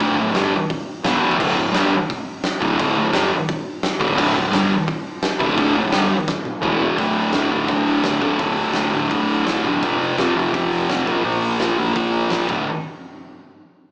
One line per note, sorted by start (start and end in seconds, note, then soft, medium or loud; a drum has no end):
0.00 0.16 D1 medium
0.00 0.15 D2 medium
0.00 0.16 A2 loud
0.00 0.17 D3 loud
0.00 kick loud
0.00 open hi-hat medium
0.16 0.33 D1 medium
0.16 0.31 D2 medium
0.16 0.31 A2 medium
0.34 0.51 G1 medium
0.34 0.51 G2 medium
0.34 0.52 D3 medium
0.34 0.52 G3 loud
0.34 snare loud
0.34 open hi-hat medium
0.70 kick loud
0.70 open hi-hat medium
1.04 1.37 E1 loud
1.04 1.38 E2 medium
1.04 1.39 B2 medium
1.04 1.39 E3 loud
1.04 snare loud
1.04 open hi-hat medium
1.31 kick medium
1.38 1.56 D1 medium
1.38 1.55 D2 medium
1.38 1.55 A2 loud
1.38 1.56 D3 loud
1.38 kick loud
1.38 crash loud
1.56 1.73 D1 medium
1.56 1.70 D2 medium
1.56 1.70 A2 medium
1.73 1.90 G1 medium
1.73 1.90 G2 medium
1.73 1.91 D3 loud
1.73 1.91 G3 loud
1.73 snare loud
1.73 open hi-hat medium
2.10 kick loud
2.10 open hi-hat medium
2.44 snare loud
2.44 open hi-hat medium
2.60 2.78 D1 loud
2.60 2.77 D2 loud
2.60 2.78 A2 loud
2.60 2.79 D3 loud
2.60 kick medium
2.78 2.95 D1 loud
2.78 2.95 D2 medium
2.78 2.96 A2 loud
2.78 2.96 D3 loud
2.78 kick loud
2.78 open hi-hat medium
2.97 3.12 D1 medium
2.97 3.10 D2 medium
2.97 3.10 A2 medium
3.13 3.30 G1 loud
3.13 3.30 G2 loud
3.13 3.31 D3 loud
3.13 3.31 G3 loud
3.13 snare loud
3.13 open hi-hat medium
3.49 kick loud
3.49 open hi-hat medium
3.83 snare loud
3.83 open hi-hat medium
3.99 4.17 D1 loud
3.99 4.15 D2 loud
3.99 4.16 A2 loud
3.99 4.17 D3 loud
3.99 kick medium
4.16 4.34 D1 loud
4.16 4.32 D2 medium
4.16 4.33 A2 loud
4.16 4.35 D3 loud
4.16 kick loud
4.16 crash loud
4.34 4.51 D1 medium
4.34 4.48 D2 medium
4.34 4.49 A2 medium
4.51 4.69 G1 medium
4.51 4.69 G2 loud
4.51 4.69 D3 loud
4.51 4.70 G3 loud
4.51 snare loud
4.51 open hi-hat medium
4.88 kick loud
4.88 open hi-hat medium
5.23 snare loud
5.23 open hi-hat medium
5.39 5.56 D1 loud
5.39 5.55 D2 medium
5.39 5.56 A2 loud
5.39 5.57 D3 loud
5.39 kick medium
5.56 5.74 D1 loud
5.56 5.74 D2 medium
5.56 5.74 A2 loud
5.56 5.75 D3 loud
5.56 kick loud
5.56 open hi-hat medium
5.75 5.91 D1 medium
5.75 5.89 D2 medium
5.75 5.89 A2 medium
5.92 6.09 G1 medium
5.92 6.09 G2 loud
5.92 6.10 D3 loud
5.92 6.10 G3 loud
5.92 snare loud
5.92 open hi-hat medium
6.28 kick loud
6.28 snare medium
6.45 high tom medium
6.61 6.95 E1 medium
6.61 6.97 E2 loud
6.61 6.97 B2 medium
6.61 6.98 E3 loud
6.61 mid tom loud
6.80 floor tom loud
6.97 7.12 D1 medium
6.97 7.31 D2 loud
6.97 7.32 A2 loud
6.97 7.33 D3 loud
6.97 kick loud
6.97 open hi-hat medium
7.16 7.29 D1 medium
7.16 open hi-hat soft
7.32 7.47 D1 medium
7.32 7.50 D2 medium
7.32 7.50 A2 medium
7.32 7.52 D3 medium
7.32 snare loud
7.32 open hi-hat medium
7.50 7.65 D1 medium
7.50 7.66 D2 medium
7.50 7.67 A2 medium
7.50 7.68 D3 medium
7.50 open hi-hat soft
7.67 7.82 D1 medium
7.67 8.03 D2 medium
7.67 8.03 A2 medium
7.67 8.04 D3 medium
7.67 kick loud
7.67 open hi-hat medium
7.87 8.00 D1 medium
7.87 open hi-hat medium
8.04 8.31 D1 medium
8.04 8.20 D2 medium
8.04 8.21 A2 medium
8.04 8.22 D3 medium
8.04 snare loud
8.04 open hi-hat medium
8.21 8.37 D2 medium
8.21 8.38 A2 medium
8.21 8.38 D3 medium
8.21 kick medium
8.21 open hi-hat medium
8.38 8.53 D1 medium
8.38 8.74 D2 medium
8.38 8.74 A2 loud
8.38 8.75 D3 loud
8.38 kick loud
8.38 open hi-hat medium
8.56 8.71 D1 medium
8.56 open hi-hat medium
8.74 8.89 D1 medium
8.74 8.91 D2 medium
8.74 8.93 A2 medium
8.74 8.93 D3 loud
8.74 snare loud
8.74 open hi-hat medium
8.92 9.06 D1 medium
8.92 9.09 D2 medium
8.92 9.10 A2 medium
8.92 9.11 D3 medium
8.92 open hi-hat medium
9.10 9.38 D1 medium
9.10 9.44 D2 medium
9.10 9.45 A2 loud
9.10 9.46 D3 medium
9.10 kick loud
9.10 open hi-hat medium
9.29 open hi-hat medium
9.45 9.60 D1 medium
9.45 9.63 D2 medium
9.45 9.64 A2 medium
9.45 9.65 D3 medium
9.45 snare loud
9.45 open hi-hat medium
9.65 9.78 E1 medium
9.65 9.81 D2 medium
9.65 9.81 A2 medium
9.65 9.82 D3 loud
9.65 kick medium
9.65 open hi-hat medium
9.82 9.96 F1 medium
9.82 10.16 F2 medium
9.82 10.17 C3 medium
9.82 10.19 F3 loud
9.82 kick loud
9.82 open hi-hat medium
10.01 10.14 F1 medium
10.01 open hi-hat medium
10.18 10.32 F1 medium
10.18 10.34 F2 medium
10.18 10.35 C3 medium
10.18 10.36 F3 medium
10.18 snare loud
10.18 open hi-hat medium
10.35 10.49 F1 medium
10.35 10.52 F2 medium
10.35 10.53 C3 medium
10.35 10.55 F3 medium
10.35 open hi-hat soft
10.53 10.67 F1 medium
10.53 10.88 F2 medium
10.53 10.89 C3 medium
10.53 10.91 F3 medium
10.53 kick loud
10.53 open hi-hat medium
10.72 10.85 F1 medium
10.72 open hi-hat medium
10.89 11.02 F1 medium
10.89 11.06 F2 medium
10.89 11.06 C3 medium
10.89 11.08 F3 medium
10.89 snare loud
10.89 open hi-hat medium
11.07 11.21 A#1 medium
11.07 11.22 A#2 medium
11.07 11.23 F3 medium
11.07 11.24 A#3 loud
11.07 kick medium
11.07 open hi-hat medium
11.23 11.38 A#1 medium
11.23 11.58 A#2 medium
11.23 11.59 F3 medium
11.23 11.59 A#3 medium
11.23 open hi-hat medium
11.42 11.56 A#1 medium
11.42 open hi-hat medium
11.59 11.74 A#1 medium
11.59 11.76 A#2 medium
11.59 11.77 F3 medium
11.59 11.78 A#3 medium
11.59 snare medium
11.59 open hi-hat medium
11.77 11.91 A#1 medium
11.77 11.93 A#2 medium
11.77 11.94 F3 medium
11.77 11.94 A#3 medium
11.77 open hi-hat medium
11.94 12.23 A#1 medium
11.94 12.28 A#2 medium
11.94 12.29 F3 medium
11.94 12.30 A#3 medium
11.94 kick loud
11.94 open hi-hat medium
12.13 open hi-hat medium
12.29 12.45 A#1 medium
12.29 12.48 A#2 medium
12.29 12.48 F3 medium
12.29 12.49 A#3 medium
12.29 snare loud
12.29 open hi-hat medium
12.48 12.66 D1 medium
12.48 12.63 D2 medium
12.48 12.63 A2 medium
12.48 12.64 D3 medium
12.48 kick medium
12.48 crash medium